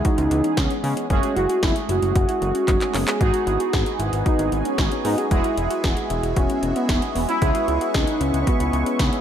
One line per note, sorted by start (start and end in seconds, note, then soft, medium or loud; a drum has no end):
0.00 1.06 E3 medium
0.00 1.06 G#3 medium
0.00 1.06 B3 medium
0.00 1.06 C#4 medium
0.00 1.06 G#4 medium
0.05 0.59 D#4 loud
0.05 0.12 F#4 medium
0.05 kick loud
0.05 closed hi-hat medium
0.18 0.29 C#2 loud
0.18 0.32 E4 medium
0.18 closed hi-hat medium
0.31 0.42 C#2 loud
0.31 closed hi-hat medium
0.44 0.51 C#4 medium
0.44 closed hi-hat medium
0.57 0.68 C#2 loud
0.57 0.83 C#4 loud
0.57 0.65 D#4 medium
0.57 kick loud
0.57 snare loud
0.57 closed hi-hat medium
0.71 0.78 C#4 medium
0.71 closed hi-hat soft
0.84 0.95 C#3 loud
0.84 0.91 B3 medium
0.84 1.08 C#4 loud
0.84 open hi-hat medium
0.97 1.04 C#4 medium
0.97 closed hi-hat medium
1.10 1.21 F#1 loud
1.10 3.17 G#3 medium
1.10 3.17 A3 medium
1.10 1.35 C#4 loud
1.10 3.17 C#4 medium
1.10 3.17 F#4 medium
1.10 3.17 G#4 medium
1.10 1.17 G#4 loud
1.10 kick loud
1.10 closed hi-hat medium
1.23 1.30 F#4 medium
1.23 closed hi-hat medium
1.36 1.47 F#1 loud
1.36 1.44 E4 medium
1.36 1.61 F#4 loud
1.36 closed hi-hat medium
1.49 1.57 F#4 medium
1.49 closed hi-hat medium
1.63 1.74 F#1 loud
1.63 1.75 E4 loud
1.63 1.77 G#4 medium
1.63 kick loud
1.63 snare loud
1.63 closed hi-hat medium
1.76 closed hi-hat medium
1.89 2.00 F#1 loud
1.89 2.03 E4 medium
1.89 2.96 F#4 loud
1.89 closed hi-hat medium
2.02 2.13 F#1 loud
2.02 closed hi-hat medium
2.15 2.26 F#1 loud
2.15 2.23 F#4 medium
2.15 kick loud
2.15 closed hi-hat medium
2.29 2.43 E4 medium
2.29 closed hi-hat medium
2.42 2.53 F#1 loud
2.42 closed hi-hat medium
2.55 2.62 C#4 medium
2.55 closed hi-hat medium
2.68 2.79 F#1 loud
2.68 2.75 D#4 medium
2.68 kick loud
2.68 clap medium
2.68 closed hi-hat medium
2.81 2.88 C#4 medium
2.81 clap medium
2.81 closed hi-hat soft
2.94 3.05 F#1 loud
2.94 3.01 B3 medium
2.94 3.09 C#4 loud
2.94 clap medium
2.94 open hi-hat medium
3.08 3.15 C#4 medium
3.08 3.22 G#4 loud
3.08 clap loud
3.08 closed hi-hat medium
3.20 3.32 G#1 loud
3.20 5.27 G#3 medium
3.20 5.27 B3 medium
3.20 5.27 D#4 medium
3.20 7.38 F#4 medium
3.20 5.27 F#4 medium
3.20 4.00 F#4 loud
3.20 3.28 G#4 medium
3.20 5.27 G#4 medium
3.20 5.29 B4 medium
3.20 7.38 G#5 loud
3.20 kick loud
3.20 closed hi-hat medium
3.34 3.41 F#4 medium
3.34 closed hi-hat medium
3.47 3.58 G#1 loud
3.47 3.54 E4 medium
3.47 closed hi-hat medium
3.60 3.67 F#4 medium
3.60 closed hi-hat medium
3.73 3.84 G#1 loud
3.73 3.88 G#4 medium
3.73 kick loud
3.73 snare loud
3.73 closed hi-hat medium
3.86 closed hi-hat medium
3.99 4.10 G#1 loud
3.99 4.14 E4 medium
3.99 closed hi-hat medium
4.13 4.24 G#1 medium
4.13 closed hi-hat medium
4.26 4.63 D#4 medium
4.26 4.33 F#4 medium
4.26 kick loud
4.26 closed hi-hat medium
4.39 4.50 G#1 loud
4.39 4.53 E4 medium
4.39 closed hi-hat medium
4.52 4.63 G#1 loud
4.52 closed hi-hat medium
4.65 4.77 C#4 medium
4.65 4.73 C#4 medium
4.65 closed hi-hat medium
4.78 4.89 G#1 loud
4.78 4.86 D#4 medium
4.78 kick loud
4.78 snare loud
4.78 closed hi-hat medium
4.92 4.99 C#4 medium
4.92 closed hi-hat soft
5.05 5.16 G#2 loud
5.05 5.12 B3 medium
5.05 5.19 D#4 loud
5.05 open hi-hat medium
5.18 5.25 C#4 medium
5.18 5.30 G#4 loud
5.18 closed hi-hat medium
5.31 5.42 E1 loud
5.31 7.38 G#3 medium
5.31 7.38 B3 medium
5.31 6.06 E4 loud
5.31 7.38 E4 medium
5.31 7.38 F#4 medium
5.31 7.38 G#4 medium
5.31 5.38 G#4 medium
5.31 9.21 E5 medium
5.31 kick loud
5.31 closed hi-hat medium
5.44 5.51 F#4 medium
5.44 closed hi-hat medium
5.57 5.68 E1 loud
5.57 5.65 E4 medium
5.57 closed hi-hat medium
5.71 5.78 F#4 medium
5.71 closed hi-hat medium
5.84 5.95 E1 loud
5.84 5.98 G#4 medium
5.84 kick loud
5.84 snare loud
5.84 closed hi-hat medium
5.97 closed hi-hat medium
6.10 6.21 E1 loud
6.10 6.24 E4 medium
6.10 closed hi-hat medium
6.23 6.34 E1 loud
6.23 closed hi-hat medium
6.36 6.47 E1 loud
6.36 6.73 C#4 loud
6.36 6.44 F#4 medium
6.36 kick loud
6.36 closed hi-hat medium
6.50 6.64 E4 medium
6.50 closed hi-hat medium
6.63 6.74 E1 loud
6.63 closed hi-hat medium
6.76 7.01 B3 medium
6.76 6.83 C#4 medium
6.76 closed hi-hat medium
6.89 7.00 E1 medium
6.89 6.96 D#4 medium
6.89 kick loud
6.89 snare loud
6.89 closed hi-hat medium
7.02 7.09 C#4 medium
7.02 closed hi-hat soft
7.15 7.26 E1 loud
7.15 7.23 B3 medium
7.15 7.21 B3 loud
7.15 open hi-hat medium
7.29 7.36 C#4 medium
7.29 7.96 E4 loud
7.29 closed hi-hat medium
7.42 7.53 C#2 loud
7.42 9.21 G#3 medium
7.42 9.21 B3 medium
7.42 9.21 C#4 medium
7.42 9.21 E4 medium
7.42 7.49 G#4 loud
7.42 9.21 G#4 medium
7.42 9.21 B4 medium
7.42 9.21 C#6 medium
7.42 kick loud
7.42 closed hi-hat medium
7.55 7.62 F#4 medium
7.55 closed hi-hat medium
7.68 7.79 C#2 loud
7.68 7.75 E4 medium
7.68 closed hi-hat medium
7.81 7.88 F#4 medium
7.81 closed hi-hat medium
7.94 8.05 C#2 medium
7.94 8.22 D#4 loud
7.94 8.09 G#4 medium
7.94 kick loud
7.94 snare loud
7.94 closed hi-hat medium
8.07 closed hi-hat medium
8.21 8.32 C#2 loud
8.21 8.39 C#4 loud
8.21 8.35 E4 medium
8.21 closed hi-hat medium
8.34 8.45 C#2 loud
8.34 closed hi-hat medium
8.40 8.48 C#4 medium
8.47 9.21 B3 loud
8.47 8.54 F#4 medium
8.47 kick loud
8.47 closed hi-hat medium
8.60 8.71 C#2 medium
8.60 8.74 E4 medium
8.60 closed hi-hat medium
8.73 8.84 C#2 loud
8.73 closed hi-hat medium
8.86 8.94 C#4 medium
8.86 closed hi-hat medium
8.99 9.10 C#2 loud
8.99 9.07 D#4 medium
8.99 kick loud
8.99 snare loud
8.99 closed hi-hat medium
9.13 9.20 C#4 medium
9.13 closed hi-hat soft